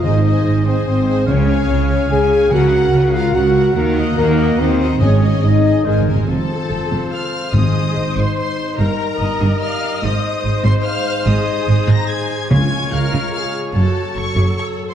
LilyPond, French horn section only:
\new Staff \with { instrumentName = "French horn section" } { \time 3/4 \key aes \mixolydian \tempo 4 = 145 << { ees'4. c'8 c'4 | des'2 aes'4 | ges'4. f'8 ges'4 | bes4 bes4 c'4 |
des'4 ees'4 aes4 | f'2. | ees'2.~ | ees'2. |
ees'2.~ | ees'2. | f'2. | ges'2. | } \\ { r2. | r2. | r2. | r2. |
r2. | c'2. | aes2. | g2. |
aes2.~ | aes2. | aes2. | ges2. | } >> }